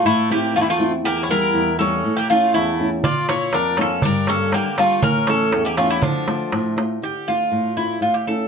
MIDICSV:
0, 0, Header, 1, 5, 480
1, 0, Start_track
1, 0, Key_signature, -1, "minor"
1, 0, Tempo, 498753
1, 47, Time_signature, 2, 2, 24, 8
1, 8160, End_track
2, 0, Start_track
2, 0, Title_t, "Bouzouki"
2, 0, Program_c, 0, 25
2, 55, Note_on_c, 0, 64, 90
2, 274, Note_off_c, 0, 64, 0
2, 302, Note_on_c, 0, 67, 92
2, 533, Note_off_c, 0, 67, 0
2, 537, Note_on_c, 0, 65, 88
2, 585, Note_off_c, 0, 65, 0
2, 589, Note_on_c, 0, 64, 71
2, 658, Note_off_c, 0, 64, 0
2, 672, Note_on_c, 0, 65, 91
2, 876, Note_off_c, 0, 65, 0
2, 1012, Note_on_c, 0, 67, 99
2, 1169, Note_off_c, 0, 67, 0
2, 1183, Note_on_c, 0, 73, 67
2, 1247, Note_off_c, 0, 73, 0
2, 1256, Note_on_c, 0, 70, 103
2, 1717, Note_off_c, 0, 70, 0
2, 1721, Note_on_c, 0, 69, 92
2, 2083, Note_on_c, 0, 67, 80
2, 2093, Note_off_c, 0, 69, 0
2, 2206, Note_off_c, 0, 67, 0
2, 2210, Note_on_c, 0, 65, 90
2, 2430, Note_off_c, 0, 65, 0
2, 2444, Note_on_c, 0, 64, 84
2, 2777, Note_off_c, 0, 64, 0
2, 2931, Note_on_c, 0, 74, 105
2, 3149, Note_off_c, 0, 74, 0
2, 3168, Note_on_c, 0, 73, 104
2, 3406, Note_off_c, 0, 73, 0
2, 3410, Note_on_c, 0, 70, 93
2, 3652, Note_off_c, 0, 70, 0
2, 3668, Note_on_c, 0, 69, 92
2, 3878, Note_off_c, 0, 69, 0
2, 3899, Note_on_c, 0, 70, 96
2, 4128, Note_off_c, 0, 70, 0
2, 4132, Note_on_c, 0, 69, 99
2, 4368, Note_off_c, 0, 69, 0
2, 4372, Note_on_c, 0, 67, 87
2, 4589, Note_off_c, 0, 67, 0
2, 4610, Note_on_c, 0, 65, 91
2, 4828, Note_off_c, 0, 65, 0
2, 4846, Note_on_c, 0, 70, 99
2, 5090, Note_off_c, 0, 70, 0
2, 5095, Note_on_c, 0, 69, 93
2, 5423, Note_off_c, 0, 69, 0
2, 5447, Note_on_c, 0, 67, 83
2, 5555, Note_off_c, 0, 67, 0
2, 5560, Note_on_c, 0, 65, 79
2, 5671, Note_off_c, 0, 65, 0
2, 5680, Note_on_c, 0, 64, 80
2, 5792, Note_off_c, 0, 64, 0
2, 5805, Note_on_c, 0, 62, 83
2, 6485, Note_off_c, 0, 62, 0
2, 6770, Note_on_c, 0, 67, 78
2, 7003, Note_on_c, 0, 65, 75
2, 7013, Note_off_c, 0, 67, 0
2, 7450, Note_off_c, 0, 65, 0
2, 7476, Note_on_c, 0, 64, 70
2, 7703, Note_off_c, 0, 64, 0
2, 7718, Note_on_c, 0, 65, 76
2, 7832, Note_off_c, 0, 65, 0
2, 7834, Note_on_c, 0, 67, 66
2, 7959, Note_off_c, 0, 67, 0
2, 7962, Note_on_c, 0, 69, 74
2, 8160, Note_off_c, 0, 69, 0
2, 8160, End_track
3, 0, Start_track
3, 0, Title_t, "Bouzouki"
3, 0, Program_c, 1, 25
3, 58, Note_on_c, 1, 57, 83
3, 276, Note_off_c, 1, 57, 0
3, 306, Note_on_c, 1, 58, 72
3, 520, Note_off_c, 1, 58, 0
3, 545, Note_on_c, 1, 57, 75
3, 599, Note_off_c, 1, 57, 0
3, 601, Note_on_c, 1, 55, 63
3, 660, Note_off_c, 1, 55, 0
3, 674, Note_on_c, 1, 57, 72
3, 877, Note_off_c, 1, 57, 0
3, 1018, Note_on_c, 1, 58, 82
3, 1172, Note_off_c, 1, 58, 0
3, 1184, Note_on_c, 1, 64, 67
3, 1244, Note_off_c, 1, 64, 0
3, 1259, Note_on_c, 1, 64, 83
3, 1698, Note_off_c, 1, 64, 0
3, 1738, Note_on_c, 1, 61, 79
3, 2066, Note_off_c, 1, 61, 0
3, 2098, Note_on_c, 1, 58, 70
3, 2203, Note_off_c, 1, 58, 0
3, 2218, Note_on_c, 1, 57, 72
3, 2434, Note_off_c, 1, 57, 0
3, 2450, Note_on_c, 1, 57, 72
3, 2781, Note_off_c, 1, 57, 0
3, 2923, Note_on_c, 1, 65, 95
3, 3146, Note_off_c, 1, 65, 0
3, 3163, Note_on_c, 1, 64, 85
3, 3385, Note_off_c, 1, 64, 0
3, 3404, Note_on_c, 1, 62, 76
3, 3626, Note_off_c, 1, 62, 0
3, 3631, Note_on_c, 1, 61, 76
3, 3858, Note_off_c, 1, 61, 0
3, 3878, Note_on_c, 1, 62, 84
3, 4102, Note_off_c, 1, 62, 0
3, 4119, Note_on_c, 1, 61, 74
3, 4342, Note_off_c, 1, 61, 0
3, 4367, Note_on_c, 1, 58, 74
3, 4586, Note_off_c, 1, 58, 0
3, 4599, Note_on_c, 1, 57, 71
3, 4822, Note_off_c, 1, 57, 0
3, 4835, Note_on_c, 1, 61, 89
3, 5060, Note_off_c, 1, 61, 0
3, 5071, Note_on_c, 1, 61, 78
3, 5409, Note_off_c, 1, 61, 0
3, 5435, Note_on_c, 1, 58, 68
3, 5548, Note_off_c, 1, 58, 0
3, 5554, Note_on_c, 1, 57, 71
3, 5668, Note_off_c, 1, 57, 0
3, 5681, Note_on_c, 1, 55, 63
3, 5785, Note_off_c, 1, 55, 0
3, 5789, Note_on_c, 1, 53, 66
3, 6477, Note_off_c, 1, 53, 0
3, 8160, End_track
4, 0, Start_track
4, 0, Title_t, "Nylon-string guitar"
4, 0, Program_c, 2, 24
4, 50, Note_on_c, 2, 45, 72
4, 291, Note_on_c, 2, 57, 47
4, 294, Note_on_c, 2, 60, 44
4, 298, Note_on_c, 2, 64, 55
4, 513, Note_off_c, 2, 45, 0
4, 525, Note_on_c, 2, 40, 67
4, 672, Note_off_c, 2, 57, 0
4, 675, Note_off_c, 2, 60, 0
4, 677, Note_off_c, 2, 64, 0
4, 759, Note_on_c, 2, 57, 52
4, 763, Note_on_c, 2, 60, 50
4, 769, Note_on_c, 2, 64, 54
4, 953, Note_off_c, 2, 57, 0
4, 956, Note_off_c, 2, 60, 0
4, 958, Note_off_c, 2, 64, 0
4, 990, Note_off_c, 2, 40, 0
4, 1006, Note_on_c, 2, 40, 72
4, 1240, Note_on_c, 2, 55, 52
4, 1244, Note_on_c, 2, 58, 46
4, 1248, Note_on_c, 2, 64, 56
4, 1470, Note_off_c, 2, 40, 0
4, 1481, Note_on_c, 2, 40, 70
4, 1626, Note_off_c, 2, 55, 0
4, 1626, Note_off_c, 2, 58, 0
4, 1630, Note_off_c, 2, 64, 0
4, 1727, Note_on_c, 2, 55, 51
4, 1733, Note_on_c, 2, 58, 44
4, 1733, Note_on_c, 2, 64, 58
4, 1918, Note_off_c, 2, 55, 0
4, 1920, Note_off_c, 2, 58, 0
4, 1921, Note_off_c, 2, 64, 0
4, 1947, Note_off_c, 2, 40, 0
4, 1968, Note_on_c, 2, 45, 65
4, 2211, Note_on_c, 2, 57, 49
4, 2214, Note_on_c, 2, 61, 45
4, 2217, Note_on_c, 2, 64, 55
4, 2431, Note_off_c, 2, 45, 0
4, 2450, Note_on_c, 2, 40, 71
4, 2591, Note_off_c, 2, 57, 0
4, 2592, Note_off_c, 2, 61, 0
4, 2594, Note_off_c, 2, 64, 0
4, 2686, Note_on_c, 2, 57, 50
4, 2690, Note_on_c, 2, 61, 44
4, 2698, Note_on_c, 2, 64, 53
4, 2876, Note_off_c, 2, 57, 0
4, 2879, Note_off_c, 2, 61, 0
4, 2883, Note_off_c, 2, 64, 0
4, 2911, Note_off_c, 2, 40, 0
4, 2932, Note_on_c, 2, 46, 67
4, 3165, Note_on_c, 2, 58, 47
4, 3171, Note_on_c, 2, 65, 52
4, 3173, Note_on_c, 2, 62, 45
4, 3392, Note_off_c, 2, 46, 0
4, 3406, Note_on_c, 2, 41, 71
4, 3548, Note_off_c, 2, 58, 0
4, 3549, Note_off_c, 2, 65, 0
4, 3552, Note_off_c, 2, 62, 0
4, 3639, Note_on_c, 2, 58, 52
4, 3644, Note_on_c, 2, 62, 45
4, 3648, Note_on_c, 2, 65, 54
4, 3832, Note_off_c, 2, 58, 0
4, 3833, Note_off_c, 2, 62, 0
4, 3834, Note_off_c, 2, 65, 0
4, 3869, Note_off_c, 2, 41, 0
4, 3892, Note_on_c, 2, 43, 69
4, 4124, Note_on_c, 2, 55, 52
4, 4132, Note_on_c, 2, 58, 45
4, 4134, Note_on_c, 2, 62, 56
4, 4351, Note_off_c, 2, 43, 0
4, 4356, Note_on_c, 2, 50, 67
4, 4506, Note_off_c, 2, 55, 0
4, 4511, Note_off_c, 2, 58, 0
4, 4511, Note_off_c, 2, 62, 0
4, 4600, Note_on_c, 2, 55, 50
4, 4606, Note_on_c, 2, 58, 44
4, 4608, Note_on_c, 2, 62, 57
4, 4792, Note_off_c, 2, 55, 0
4, 4793, Note_off_c, 2, 58, 0
4, 4796, Note_off_c, 2, 62, 0
4, 4823, Note_off_c, 2, 50, 0
4, 4831, Note_on_c, 2, 45, 67
4, 5084, Note_on_c, 2, 52, 50
4, 5088, Note_on_c, 2, 57, 46
4, 5090, Note_on_c, 2, 61, 53
4, 5300, Note_off_c, 2, 45, 0
4, 5330, Note_on_c, 2, 40, 69
4, 5466, Note_off_c, 2, 52, 0
4, 5468, Note_off_c, 2, 57, 0
4, 5468, Note_off_c, 2, 61, 0
4, 5558, Note_on_c, 2, 52, 50
4, 5564, Note_on_c, 2, 61, 53
4, 5566, Note_on_c, 2, 57, 47
4, 5751, Note_off_c, 2, 52, 0
4, 5754, Note_off_c, 2, 61, 0
4, 5756, Note_off_c, 2, 57, 0
4, 5791, Note_off_c, 2, 40, 0
4, 5799, Note_on_c, 2, 50, 64
4, 6033, Note_on_c, 2, 57, 49
4, 6038, Note_on_c, 2, 62, 45
4, 6042, Note_on_c, 2, 65, 57
4, 6265, Note_off_c, 2, 50, 0
4, 6279, Note_on_c, 2, 45, 68
4, 6420, Note_off_c, 2, 57, 0
4, 6424, Note_off_c, 2, 62, 0
4, 6425, Note_off_c, 2, 65, 0
4, 6508, Note_on_c, 2, 57, 49
4, 6515, Note_on_c, 2, 62, 45
4, 6520, Note_on_c, 2, 65, 58
4, 6706, Note_off_c, 2, 57, 0
4, 6710, Note_off_c, 2, 62, 0
4, 6713, Note_off_c, 2, 65, 0
4, 6746, Note_off_c, 2, 45, 0
4, 6758, Note_on_c, 2, 50, 60
4, 7003, Note_on_c, 2, 57, 40
4, 7009, Note_on_c, 2, 62, 40
4, 7012, Note_on_c, 2, 65, 49
4, 7226, Note_off_c, 2, 50, 0
4, 7233, Note_on_c, 2, 45, 58
4, 7387, Note_off_c, 2, 57, 0
4, 7390, Note_off_c, 2, 62, 0
4, 7392, Note_off_c, 2, 65, 0
4, 7470, Note_on_c, 2, 57, 44
4, 7478, Note_on_c, 2, 62, 39
4, 7481, Note_on_c, 2, 65, 50
4, 7669, Note_off_c, 2, 57, 0
4, 7670, Note_off_c, 2, 62, 0
4, 7674, Note_off_c, 2, 65, 0
4, 7696, Note_off_c, 2, 45, 0
4, 7708, Note_on_c, 2, 45, 58
4, 7959, Note_on_c, 2, 57, 42
4, 7966, Note_on_c, 2, 61, 41
4, 7971, Note_on_c, 2, 64, 48
4, 8160, Note_off_c, 2, 45, 0
4, 8160, Note_off_c, 2, 57, 0
4, 8160, Note_off_c, 2, 61, 0
4, 8160, Note_off_c, 2, 64, 0
4, 8160, End_track
5, 0, Start_track
5, 0, Title_t, "Darbuka"
5, 2924, Note_on_c, 9, 64, 96
5, 3020, Note_off_c, 9, 64, 0
5, 3163, Note_on_c, 9, 63, 74
5, 3259, Note_off_c, 9, 63, 0
5, 3393, Note_on_c, 9, 63, 78
5, 3490, Note_off_c, 9, 63, 0
5, 3630, Note_on_c, 9, 63, 72
5, 3726, Note_off_c, 9, 63, 0
5, 3753, Note_on_c, 9, 63, 28
5, 3850, Note_off_c, 9, 63, 0
5, 3870, Note_on_c, 9, 64, 99
5, 3966, Note_off_c, 9, 64, 0
5, 3994, Note_on_c, 9, 63, 30
5, 4090, Note_off_c, 9, 63, 0
5, 4111, Note_on_c, 9, 63, 74
5, 4208, Note_off_c, 9, 63, 0
5, 4354, Note_on_c, 9, 63, 76
5, 4450, Note_off_c, 9, 63, 0
5, 4471, Note_on_c, 9, 63, 27
5, 4567, Note_off_c, 9, 63, 0
5, 4598, Note_on_c, 9, 63, 74
5, 4694, Note_off_c, 9, 63, 0
5, 4719, Note_on_c, 9, 63, 27
5, 4815, Note_off_c, 9, 63, 0
5, 4836, Note_on_c, 9, 64, 99
5, 4933, Note_off_c, 9, 64, 0
5, 4959, Note_on_c, 9, 63, 31
5, 5055, Note_off_c, 9, 63, 0
5, 5072, Note_on_c, 9, 63, 75
5, 5169, Note_off_c, 9, 63, 0
5, 5317, Note_on_c, 9, 63, 76
5, 5413, Note_off_c, 9, 63, 0
5, 5441, Note_on_c, 9, 63, 29
5, 5537, Note_off_c, 9, 63, 0
5, 5556, Note_on_c, 9, 63, 76
5, 5653, Note_off_c, 9, 63, 0
5, 5679, Note_on_c, 9, 63, 29
5, 5775, Note_off_c, 9, 63, 0
5, 5797, Note_on_c, 9, 64, 102
5, 5894, Note_off_c, 9, 64, 0
5, 6040, Note_on_c, 9, 63, 73
5, 6137, Note_off_c, 9, 63, 0
5, 6163, Note_on_c, 9, 63, 28
5, 6260, Note_off_c, 9, 63, 0
5, 6279, Note_on_c, 9, 63, 78
5, 6375, Note_off_c, 9, 63, 0
5, 6524, Note_on_c, 9, 63, 73
5, 6620, Note_off_c, 9, 63, 0
5, 8160, End_track
0, 0, End_of_file